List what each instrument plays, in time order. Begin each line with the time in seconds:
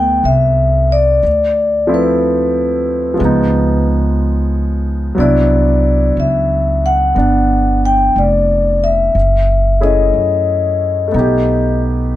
Already playing: upright bass D2, grand piano F#3 A3 B3 D4, vibraphone G5
0.24 upright bass C2, vibraphone E5
0.92 vibraphone D5
1.23 upright bass D2
1.87 grand piano F3 A3 C4 E4
1.94 vibraphone B4
3.14 grand piano F3
3.18 upright bass C#2, grand piano G#3 B3
3.25 grand piano D#4
5.15 upright bass C2, grand piano F#3 B3
5.19 grand piano D4 E4, vibraphone D5
6.17 upright bass C#2, vibraphone E5
6.86 vibraphone F#5
7.15 upright bass G1, grand piano B3 D4
7.86 vibraphone G5
8.16 upright bass F1, vibraphone D5
8.84 vibraphone E5
9.15 upright bass F#1
9.81 grand piano A3 C#4 E4 G#4, vibraphone D#5
10.14 upright bass F#2
11.08 grand piano A3
11.12 upright bass B1, grand piano B3 D#4
11.19 grand piano G4